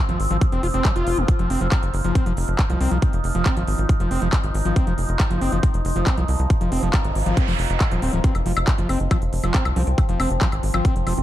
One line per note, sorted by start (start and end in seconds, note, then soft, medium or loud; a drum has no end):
0.00 8.23 F3 medium
0.00 1.31 C4 medium
0.09 0.17 G#1 medium
0.09 0.19 F3 medium
0.09 closed hi-hat medium
0.20 0.27 G#1 loud
0.20 open hi-hat loud
0.31 0.38 G#1 medium
0.31 0.37 F3 medium
0.31 closed hi-hat medium
0.41 kick loud
0.41 closed hi-hat medium
0.52 0.60 F1 medium
0.52 0.62 C4 medium
0.52 closed hi-hat soft
0.63 0.71 F1 loud
0.63 0.67 F4 medium
0.63 open hi-hat loud
0.74 0.82 F1 medium
0.74 0.86 C4 medium
0.74 closed hi-hat soft
0.85 0.92 F3 medium
0.85 kick loud
0.85 clap loud
0.85 closed hi-hat medium
0.96 1.04 F1 medium
0.96 1.19 F4 loud
0.96 closed hi-hat medium
1.07 1.14 F1 loud
1.07 open hi-hat loud
1.18 1.25 F1 medium
1.18 1.24 G#3 medium
1.18 closed hi-hat soft
1.28 8.26 D#4 medium
1.28 kick loud
1.28 closed hi-hat medium
1.39 1.47 F1 medium
1.39 1.49 F3 medium
1.39 closed hi-hat soft
1.50 1.58 F1 loud
1.50 1.60 C4 medium
1.50 open hi-hat loud
1.61 1.69 F1 medium
1.61 1.68 F3 medium
1.61 closed hi-hat soft
1.72 kick loud
1.72 clap loud
1.72 closed hi-hat medium
1.83 1.90 F#1 medium
1.83 closed hi-hat soft
1.94 2.01 F#1 loud
1.94 open hi-hat loud
2.04 2.12 F#1 medium
2.04 2.14 F3 medium
2.04 closed hi-hat medium
2.15 2.25 C4 medium
2.15 kick loud
2.15 closed hi-hat medium
2.26 2.34 F1 medium
2.26 2.33 F3 medium
2.26 closed hi-hat medium
2.37 2.45 F1 loud
2.37 open hi-hat loud
2.48 2.56 F1 medium
2.48 closed hi-hat soft
2.59 kick loud
2.59 clap loud
2.59 closed hi-hat medium
2.70 2.77 C2 medium
2.70 2.80 F3 medium
2.70 closed hi-hat medium
2.81 2.88 C2 loud
2.81 2.90 C4 medium
2.81 open hi-hat loud
2.91 2.99 C2 medium
2.91 2.98 F3 medium
2.91 closed hi-hat soft
3.02 kick loud
3.02 closed hi-hat medium
3.13 3.21 F1 medium
3.13 closed hi-hat soft
3.24 3.32 F1 loud
3.24 open hi-hat loud
3.35 3.43 F1 medium
3.35 3.45 F3 medium
3.35 closed hi-hat medium
3.46 3.56 C4 medium
3.46 kick loud
3.46 clap loud
3.46 closed hi-hat medium
3.57 3.64 G#1 medium
3.57 3.63 F3 medium
3.57 closed hi-hat medium
3.68 3.75 G#1 loud
3.68 open hi-hat loud
3.78 3.86 G#1 loud
3.78 closed hi-hat medium
3.89 kick loud
3.89 closed hi-hat medium
4.00 4.08 F1 medium
4.00 4.10 F3 medium
4.00 closed hi-hat medium
4.11 4.19 F1 loud
4.11 4.21 C4 medium
4.11 open hi-hat loud
4.22 4.30 F1 medium
4.22 4.28 F3 medium
4.22 closed hi-hat medium
4.33 kick loud
4.33 clap loud
4.33 closed hi-hat medium
4.44 4.51 G#1 medium
4.44 closed hi-hat medium
4.54 4.62 G#1 loud
4.54 open hi-hat loud
4.65 4.73 G#1 medium
4.65 4.75 F3 medium
4.65 closed hi-hat medium
4.76 4.86 C4 medium
4.76 kick loud
4.76 closed hi-hat medium
4.87 4.95 F1 medium
4.87 4.94 F3 medium
4.87 closed hi-hat medium
4.98 5.06 F1 medium
4.98 open hi-hat loud
5.09 5.17 F1 medium
5.09 closed hi-hat medium
5.20 kick loud
5.20 clap loud
5.20 closed hi-hat medium
5.31 5.38 F#1 medium
5.31 5.40 F3 medium
5.31 closed hi-hat medium
5.41 5.49 F#1 loud
5.41 5.51 C4 medium
5.41 open hi-hat loud
5.52 5.60 F#1 medium
5.52 5.59 F3 medium
5.52 closed hi-hat medium
5.63 kick loud
5.63 closed hi-hat medium
5.74 5.82 F1 medium
5.74 closed hi-hat medium
5.85 5.93 F1 loud
5.85 open hi-hat loud
5.96 6.04 F1 medium
5.96 6.06 F3 medium
5.96 closed hi-hat medium
6.07 6.17 C4 medium
6.07 kick loud
6.07 clap loud
6.07 closed hi-hat medium
6.18 6.25 C2 medium
6.18 6.24 F3 medium
6.18 closed hi-hat medium
6.28 6.36 C2 loud
6.28 open hi-hat loud
6.39 6.47 C2 medium
6.39 closed hi-hat medium
6.50 kick loud
6.50 closed hi-hat medium
6.50 noise sweep medium
6.61 6.69 F1 medium
6.61 6.71 F3 medium
6.61 closed hi-hat medium
6.72 6.80 F1 loud
6.72 6.82 C4 medium
6.72 open hi-hat loud
6.83 6.90 F1 medium
6.83 6.89 F3 medium
6.83 closed hi-hat medium
6.94 kick loud
6.94 clap loud
6.94 closed hi-hat medium
7.04 7.12 G#1 medium
7.04 closed hi-hat medium
7.15 7.23 G#1 loud
7.15 open hi-hat loud
7.26 7.34 G#1 medium
7.26 7.36 F3 medium
7.26 closed hi-hat medium
7.37 7.47 C4 medium
7.37 kick loud
7.37 closed hi-hat medium
7.48 7.56 F1 medium
7.48 7.55 F3 medium
7.48 open hi-hat medium
7.59 7.67 F1 loud
7.59 open hi-hat loud
7.70 7.77 F1 medium
7.70 closed hi-hat medium
7.81 kick loud
7.81 clap loud
7.81 closed hi-hat medium
7.91 7.99 D#1 medium
7.91 8.01 F3 medium
7.91 closed hi-hat medium
8.02 8.10 D#1 loud
8.02 8.12 C4 medium
8.02 open hi-hat loud
8.13 8.21 D#1 medium
8.13 8.20 F3 medium
8.13 closed hi-hat medium
8.24 11.23 F3 medium
8.24 11.23 C4 medium
8.24 8.34 C4 medium
8.24 kick loud
8.24 closed hi-hat medium
8.35 8.43 F1 medium
8.35 closed hi-hat medium
8.35 high woodblock soft
8.46 8.54 F1 loud
8.46 8.52 F3 medium
8.46 open hi-hat loud
8.57 8.64 F1 medium
8.57 closed hi-hat medium
8.57 high woodblock medium
8.68 kick loud
8.68 clap loud
8.68 closed hi-hat medium
8.78 8.86 F#1 medium
8.78 8.88 F3 medium
8.78 closed hi-hat medium
8.89 8.97 F#1 loud
8.89 8.99 C4 medium
8.89 open hi-hat loud
8.89 high woodblock soft
9.00 9.08 F#1 medium
9.00 closed hi-hat medium
9.11 9.18 F3 medium
9.11 kick loud
9.11 closed hi-hat medium
9.11 high woodblock medium
9.22 9.30 F1 medium
9.22 closed hi-hat medium
9.33 9.41 F1 loud
9.33 open hi-hat loud
9.44 9.51 F1 medium
9.44 9.53 F3 medium
9.44 closed hi-hat medium
9.44 high woodblock soft
9.54 9.64 C4 medium
9.54 kick loud
9.54 clap loud
9.54 closed hi-hat medium
9.65 9.73 C2 medium
9.65 closed hi-hat medium
9.65 high woodblock medium
9.76 9.84 C2 loud
9.76 9.83 F3 medium
9.76 9.88 C4 medium
9.76 open hi-hat loud
9.87 9.95 C2 medium
9.87 closed hi-hat medium
9.98 kick loud
9.98 closed hi-hat medium
9.98 high woodblock soft
10.09 10.17 F1 medium
10.09 10.19 F3 medium
10.09 closed hi-hat medium
10.20 10.27 F1 loud
10.20 10.30 C4 medium
10.20 open hi-hat loud
10.20 high woodblock medium
10.31 10.38 F1 medium
10.31 closed hi-hat medium
10.41 10.48 F3 medium
10.41 kick loud
10.41 clap loud
10.41 closed hi-hat medium
10.52 10.60 G#1 medium
10.52 closed hi-hat medium
10.52 high woodblock soft
10.63 10.71 G#1 loud
10.63 open hi-hat loud
10.74 10.82 G#1 medium
10.74 10.84 F3 medium
10.74 closed hi-hat medium
10.74 high woodblock medium
10.85 10.95 C4 medium
10.85 kick loud
10.85 closed hi-hat medium
10.96 11.04 F1 medium
10.96 closed hi-hat medium
11.07 11.14 F1 loud
11.07 11.13 F3 medium
11.07 open hi-hat loud
11.07 high woodblock soft
11.18 11.23 F1 medium
11.18 11.23 C4 medium
11.18 closed hi-hat medium